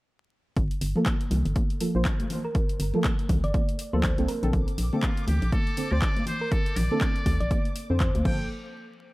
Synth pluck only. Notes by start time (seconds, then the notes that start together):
2.45 A#4
3.44 D5
3.54 D5
3.93 C5
4.28 A#4
4.43 A#4
6.41 A#4
7.40 D5
7.51 D5
8.00 C5